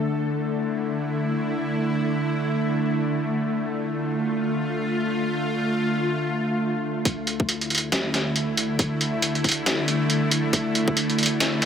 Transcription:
Already playing: D3 A3
0.10 E4
3.57 F4
7.05 D2 D3 A3 E4, kick, closed hi-hat
7.27 closed hi-hat
7.40 kick
7.49 closed hi-hat
7.61 closed hi-hat
7.70 closed hi-hat
7.75 closed hi-hat
7.78 closed hi-hat
7.92 D2, snare, closed hi-hat
8.14 snare, closed hi-hat
8.36 closed hi-hat
8.57 closed hi-hat
8.79 D2, kick, closed hi-hat
9.01 closed hi-hat
9.22 closed hi-hat
9.35 closed hi-hat
9.44 kick, closed hi-hat
9.49 closed hi-hat
9.52 closed hi-hat
9.66 C2, snare, closed hi-hat
9.88 closed hi-hat
10.10 closed hi-hat
10.26 B1
10.31 closed hi-hat
10.53 D2, kick, closed hi-hat
10.75 closed hi-hat
10.88 kick
10.97 closed hi-hat
11.10 closed hi-hat
11.18 closed hi-hat
11.23 closed hi-hat
11.26 closed hi-hat
11.40 D2, snare, closed hi-hat
11.62 snare, closed hi-hat

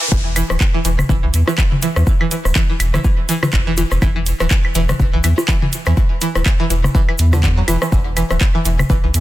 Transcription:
Already playing: riser
0.01 E3
0.12 E1 E3, kick, shaker
0.36 E3, closed hi-hat, high woodblock, shaker
0.50 D1 E3, cross-stick, shaker
0.61 kick, clap, shaker
0.74 E3
0.85 E1 E3, closed hi-hat, shaker
0.99 cross-stick, mid tom, high woodblock, shaker
1.09 E1 E3, kick, mid tom, shaker
1.23 B1 E3
1.34 E2, closed hi-hat, shaker
1.48 E3, cross-stick, low bongo, shaker
1.58 E3, kick, clap, high woodblock, shaker
1.72 mid tom
1.82 E3, closed hi-hat, shaker
1.96 E2 E3, cross-stick, shaker
2.07 kick, shaker
2.21 E3, high woodblock
2.31 E3, closed hi-hat, shaker
2.45 D1, cross-stick, shaker
2.55 E3, kick, clap, shaker
2.70 E3
2.80 E1, closed hi-hat, high woodblock, shaker
2.94 E3, cross-stick, mid tom, shaker
3.04 E3, kick, shaker
3.29 E3, closed hi-hat, shaker
3.43 E3, cross-stick, mid tom, low bongo, high woodblock, shaker
3.53 E1, kick, clap, shaker
3.67 E3
3.77 E3, closed hi-hat, low bongo, shaker
3.91 E1, cross-stick, shaker
4.02 E1 E3, kick, high woodblock, shaker
4.16 E3
4.26 closed hi-hat, shaker
4.40 D1 E3, cross-stick, shaker
4.50 E3, kick, clap, shaker
4.65 high woodblock
4.75 E1 E3, closed hi-hat, shaker
4.89 E3, cross-stick, mid tom, shaker
5.00 E1, kick, mid tom, shaker
5.13 B1 E3
5.24 E2 E3, closed hi-hat, high woodblock, shaker
5.38 cross-stick, low bongo, shaker
5.48 E3, kick, clap, shaker
5.62 E3, mid tom
5.73 closed hi-hat, shaker
5.86 E2 E3, cross-stick, high woodblock, shaker
5.97 E3, kick, shaker
6.21 E3, closed hi-hat, shaker
6.35 D1 E3, cross-stick, shaker
6.46 kick, clap, high woodblock, shaker
6.60 E3
6.70 E1 E3, closed hi-hat, shaker
6.84 cross-stick, mid tom, shaker
6.95 E3, kick, shaker
7.09 E3, high woodblock
7.18 E2, closed hi-hat, shaker
7.33 D3, cross-stick, mid tom, low bongo, shaker
7.43 D3, kick, clap, shaker
7.57 F#3
7.68 E1 E3, closed hi-hat, low bongo, high woodblock, shaker
7.82 E3, cross-stick, shaker
7.92 E1 E3, kick, shaker
8.17 E3, closed hi-hat, high woodblock, shaker
8.31 D1 E3, cross-stick, shaker
8.41 kick, clap, shaker
8.55 E3
8.65 E1 E3, closed hi-hat, shaker
8.79 cross-stick, mid tom, high woodblock, shaker
8.90 E1 E3, kick, mid tom, shaker
9.04 B1 E3
9.14 E2, closed hi-hat, shaker

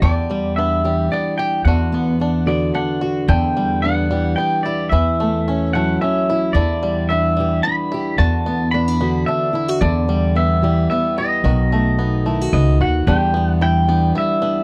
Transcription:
0.02 E2 D3 G4 D5
0.30 G3
0.56 B3 D4 E5
0.84 E3 G3 G4
1.11 B3 D4 D5
1.38 G4 G5
1.65 E2 D3 F#4 F#5
1.92 B3
2.20 D4
2.46 D3 B3 F#4 D5
2.75 D4 F#5
3.01 F#4
3.28 E2 D3 E4 G5
3.57 G3
3.82 B3 D4 F#5
4.11 E3 G3 G4
4.36 B3 D4 G5
4.63 E4 G4 D5
4.89 E2 E3 E4 E5
4.94 E2
5.20 A3
5.48 C#4
5.73 F#3 A3 E4 F#5
6.01 C#4 E5
6.30 E4
6.53 E2 D3 E4 D5
6.57 E2
6.83 G3
7.09 B3 D4 E5
7.37 E3 G3 G4
7.63 B3 D4 B5
7.92 E4 G4
8.18 E2 D3 F#4 A5
8.46 B3
8.71 B3 D4 B5
8.88 D4
9.01 D3 B3 F#4
9.26 D4 E5
9.53 E4
9.68 F#4
9.81 E2 D3 E4 D5
10.08 G3
10.35 B3 E5
10.62 E3 G3 G4
10.90 B3 E5
11.18 E4 G4 D#5
11.44 B1 B2 D#3 F#4
11.72 A3
11.99 B3 D#4
12.26 D#3 A3 E4
12.41 F#4
12.53 C#2 B3 D#4 D#5
12.80 D#2 F#4 F#5
13.07 E2 D3 E3 G3 D4 G4 G5
13.34 B3 G4
13.47 F#5
13.61 G3 E4 G5
13.89 E3 B3 D4
14.15 G3 E4 E5
14.42 B3 D4

